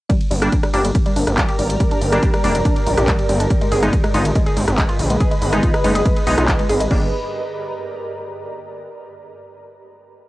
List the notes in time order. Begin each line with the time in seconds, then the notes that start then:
0.10 G2 D3 G3 G4, kick, closed hi-hat, ride
0.19 A#4, ride
0.31 G1 G3, open hi-hat, ride
0.39 G3 A#3 D4 D5, cross-stick, closed hi-hat, ride
0.52 kick, closed hi-hat, ride
0.62 G3 A#5, cross-stick, ride
0.74 G1 G3 A#3 D4 G4, open hi-hat, ride
0.85 G3, closed hi-hat, ride
0.95 kick, closed hi-hat, ride
1.06 G3, ride
1.16 G1 D4, open hi-hat, ride
1.27 G1, cross-stick, closed hi-hat, ride
1.38 G3, kick, clap, closed hi-hat, ride
1.49 G4, ride
1.59 G#1 G3, open hi-hat, ride
1.70 closed hi-hat, ride
1.80 G3, kick, closed hi-hat, ride
1.91 D4, ride
2.01 G1, open hi-hat, ride
2.12 G3 A#3 D4, cross-stick, closed hi-hat, ride
2.23 G4, kick, closed hi-hat, ride
2.34 G3, cross-stick, ride
2.44 F1 G3 A#3 D4, open hi-hat, ride
2.55 G3, closed hi-hat, ride
2.65 D4, kick, closed hi-hat, ride
2.76 ride
2.86 A#1 G3, open hi-hat, ride
2.97 A#1 G4, cross-stick, closed hi-hat, ride
3.08 G3, kick, clap, closed hi-hat, ride
3.19 ride
3.29 G1 G3, open hi-hat, ride
3.40 D4, closed hi-hat, ride
3.50 G#4, kick, closed hi-hat, ride
3.61 G#3, ride
3.72 G#1 G#4 B4, open hi-hat, ride
3.82 G#3 B3 D#4, cross-stick, closed hi-hat, ride
3.93 kick, closed hi-hat, ride
3.98 D#5
4.04 G#3, cross-stick, ride
4.14 G#1 G#3 B3 D#4 F4, open hi-hat, ride
4.25 B5, closed hi-hat, ride
4.35 G#3, kick, closed hi-hat, ride
4.46 G#4, ride
4.57 G#1 G#3, open hi-hat, ride
4.68 G#1, cross-stick, closed hi-hat, ride
4.78 G#3, kick, clap, closed hi-hat, ride
4.89 F4, ride
4.99 A#1, open hi-hat, ride
5.10 G#3, closed hi-hat, ride
5.20 G#4, kick, closed hi-hat, ride
5.31 G#3, ride
5.42 G#1, open hi-hat, ride
5.53 G#3 B3 D#4, cross-stick, closed hi-hat, ride
5.63 F4, kick, closed hi-hat, ride
5.74 cross-stick, ride
5.84 F#1 G#3 B3 D#4, open hi-hat, ride
5.95 G#4, closed hi-hat, ride
6.06 G#3, kick, closed hi-hat, ride
6.17 ride
6.27 B1 G#3 B3 D#4, open hi-hat, ride
6.38 B1 G#3 B3 D#4 F4, cross-stick, closed hi-hat, ride
6.48 kick, clap, closed hi-hat, ride
6.59 G#3, ride
6.69 G#1 G#4, open hi-hat, ride
6.80 G#3, closed hi-hat, ride
6.91 G1 G3 A#3 D4 G4, kick, crash
6.97 A#4
7.04 D5
7.10 A#5